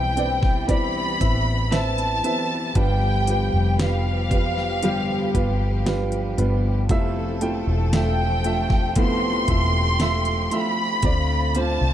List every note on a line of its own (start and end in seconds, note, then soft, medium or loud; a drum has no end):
0.00 1.16 B1 medium
0.00 0.13 G2 medium
0.00 2.72 E3 medium
0.00 0.68 G3 medium
0.00 0.69 B3 medium
0.00 0.17 C4 medium
0.00 0.68 E4 medium
0.00 2.72 E4 medium
0.00 0.69 G4 medium
0.00 0.17 B4 medium
0.00 6.86 B4 medium
0.00 1.21 E5 loud
0.00 0.66 G5 medium
0.00 2.78 G5 soft
0.00 2.77 C6 soft
0.00 impact medium
0.17 0.66 C4 medium
0.17 0.66 B4 medium
0.17 0.67 D5 medium
0.17 closed hi-hat medium
0.43 kick medium
0.43 snare soft
0.68 1.21 G3 medium
0.68 1.21 B3 medium
0.68 1.17 C4 medium
0.68 1.20 E4 medium
0.68 1.19 G4 medium
0.68 1.18 B4 medium
0.68 1.18 D5 medium
0.68 1.73 B5 loud
0.68 kick medium
0.68 closed hi-hat medium
1.20 2.20 A1 medium
1.20 2.25 B3 soft
1.20 1.69 C4 medium
1.20 2.23 E4 soft
1.20 2.23 G4 soft
1.20 1.70 B4 medium
1.20 1.70 E5 medium
1.20 kick medium
1.20 closed hi-hat medium
1.71 2.21 C4 medium
1.71 2.21 B4 medium
1.71 2.21 E5 medium
1.71 2.77 A5 loud
1.71 snare loud
1.71 closed hi-hat medium
1.98 closed hi-hat soft
2.23 2.75 B3 soft
2.23 2.73 C4 medium
2.23 2.76 E4 soft
2.23 2.75 G4 medium
2.23 2.73 B4 medium
2.23 2.74 E5 medium
2.23 closed hi-hat medium
2.75 3.49 G1 medium
2.75 3.79 G2 medium
2.75 4.27 G2 medium
2.75 4.27 D3 medium
2.75 3.79 D3 medium
2.75 3.78 F3 medium
2.75 6.86 F3 medium
2.75 3.24 G3 medium
2.75 3.79 G3 medium
2.75 3.79 B3 medium
2.75 3.25 F4 medium
2.75 3.80 G4 medium
2.75 6.86 G4 medium
2.75 3.25 B4 loud
2.75 3.76 G5 loud
2.75 kick loud
2.75 closed hi-hat medium
3.27 3.77 G3 medium
3.27 3.77 F4 medium
3.27 3.77 B4 medium
3.27 closed hi-hat medium
3.53 5.30 F1 medium
3.79 4.83 F3 medium
3.79 4.28 G3 medium
3.79 4.82 G3 medium
3.79 4.83 B3 medium
3.79 4.28 F4 medium
3.79 4.83 G4 medium
3.79 4.29 B4 medium
3.79 5.87 F5 medium
3.79 snare loud
3.79 closed hi-hat medium
4.31 4.80 G3 medium
4.31 4.80 F4 medium
4.31 4.81 B4 medium
4.31 kick medium
4.31 closed hi-hat medium
4.58 snare soft
4.83 5.34 G2 medium
4.83 5.34 D3 medium
4.83 5.35 F3 medium
4.83 5.32 G3 medium
4.83 5.35 G3 medium
4.83 5.34 B3 medium
4.83 5.32 F4 medium
4.83 5.33 G4 medium
4.83 5.32 G4 medium
4.83 closed hi-hat medium
5.34 6.34 G1 medium
5.34 6.39 F3 soft
5.34 5.83 G3 medium
5.34 6.38 G3 soft
5.34 6.37 B3 soft
5.34 5.84 F4 medium
5.34 6.36 G4 medium
5.34 5.84 B4 medium
5.34 kick medium
5.34 closed hi-hat medium
5.86 6.35 G3 loud
5.86 6.35 F4 loud
5.86 6.36 B4 loud
5.86 snare loud
5.86 closed hi-hat medium
6.12 closed hi-hat soft
6.37 6.89 G1 medium
6.37 6.88 F3 soft
6.37 6.87 G3 medium
6.37 6.90 G3 soft
6.37 6.90 B3 medium
6.37 6.87 F4 medium
6.37 6.89 G4 medium
6.37 6.87 B4 medium
6.37 closed hi-hat medium
6.89 7.63 F1 medium
6.89 8.41 C3 medium
6.89 7.41 F3 medium
6.89 10.99 F3 medium
6.89 7.39 A3 loud
6.89 11.00 A3 medium
6.89 7.42 A3 medium
6.89 7.41 C4 medium
6.89 7.40 E4 medium
6.89 7.39 F4 medium
6.89 8.95 A4 medium
6.89 7.39 E5 loud
6.89 kick loud
6.89 closed hi-hat medium
7.41 7.90 A3 medium
7.41 7.93 A3 soft
7.41 7.93 C4 soft
7.41 7.93 E4 soft
7.41 7.90 F4 medium
7.41 7.91 G5 medium
7.41 closed hi-hat medium
7.67 9.44 E1 loud
7.93 8.96 F3 medium
7.93 8.42 A3 medium
7.93 8.96 A3 medium
7.93 8.97 C4 medium
7.93 8.97 E4 medium
7.93 8.42 F4 medium
7.93 8.43 E5 medium
7.93 8.93 G5 medium
7.93 snare loud
7.93 closed hi-hat medium
8.44 8.94 A3 medium
8.44 8.94 F4 medium
8.44 8.94 E5 medium
8.44 closed hi-hat medium
8.70 kick medium
8.70 snare soft
8.96 9.48 F3 medium
8.96 9.46 A3 medium
8.96 9.48 A3 medium
8.96 9.46 B3 medium
8.96 9.48 C4 medium
8.96 9.47 E4 medium
8.96 9.46 F4 medium
8.96 11.01 G4 medium
8.96 10.53 C6 loud
8.96 kick medium
8.96 closed hi-hat medium
9.48 10.48 E1 medium
9.48 9.97 A3 medium
9.48 10.53 A3 soft
9.48 10.52 C4 soft
9.48 10.50 E4 soft
9.48 9.97 F4 medium
9.48 9.98 E5 medium
9.48 kick medium
9.48 closed hi-hat medium
10.00 10.49 A3 medium
10.00 10.49 F4 medium
10.00 10.50 E5 medium
10.00 snare loud
10.00 closed hi-hat medium
10.25 closed hi-hat soft
10.51 11.01 A3 medium
10.51 11.03 A3 soft
10.51 11.03 C4 soft
10.51 11.03 E4 soft
10.51 11.01 F4 medium
10.51 11.01 E5 medium
10.51 11.56 B5 loud
10.51 closed hi-hat medium
11.03 11.77 D2 medium
11.03 11.94 A2 medium
11.03 11.94 D3 medium
11.03 11.55 D3 medium
11.03 11.55 A3 medium
11.03 11.94 C4 medium
11.03 11.53 C4 medium
11.03 11.54 C4 medium
11.03 11.94 F4 medium
11.03 11.53 F4 medium
11.03 11.53 D5 loud
11.03 kick loud
11.03 closed hi-hat medium
11.54 11.94 A3 soft
11.54 11.94 C4 medium
11.54 11.94 C4 soft
11.54 11.94 F4 soft
11.54 11.94 F4 medium
11.54 11.94 C5 medium
11.54 11.94 A5 loud
11.54 closed hi-hat medium
11.81 11.94 C2 medium